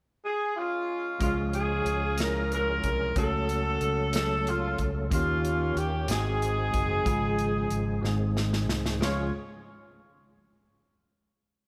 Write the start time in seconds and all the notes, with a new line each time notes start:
0.25 G#4
0.56 G#3 C#4 F4
1.19 C#2 C#3 F3 G#3 C#4 F4 G#4, kick, closed hi-hat
1.53 C#4 F4 G#4, closed hi-hat
1.85 C#2, closed hi-hat
2.17 G#3 C#4 E4 G#4 A#4, snare, closed hi-hat
2.26 F4
2.52 C#4 F4 A#4, closed hi-hat
2.84 C2, kick, closed hi-hat
3.16 C#2 C#3 F#3 A3 C#4 F#4 G#4 A4, kick, closed hi-hat
3.23 A4
3.49 closed hi-hat
3.81 C#2, closed hi-hat
4.13 F#3 A3 C#4 G#4 A4, snare, closed hi-hat
4.22 A4
4.47 F4, closed hi-hat
4.78 C#2, kick, closed hi-hat
5.11 D#2 D#3 A#3 C#4 D#4 F4 F#4 G4, kick, closed hi-hat
5.15 C#4 G4
5.45 closed hi-hat
5.76 D#2 G4, closed hi-hat
6.07 G#1 G#2 D#3 G#3 C4 D#4 F#4 G#4, closed hi-hat
6.11 C4 D#4 G#4, snare
6.42 closed hi-hat
6.73 F#1, kick, closed hi-hat
7.05 G#1 G#2 C#3 F3 G#3 F4 G4 G#4, kick, closed hi-hat
7.11 G#4
7.39 closed hi-hat
7.70 G#1, closed hi-hat
8.01 G#1 G#2 D#3 G#3 B3 C4 D#4 F#4, snare
8.06 G#4
8.11 C4
8.37 snare
8.53 snare
8.68 C2, snare
8.86 snare
8.99 C#2 F3 G#3 C#4 F4 G#4 C#5, snare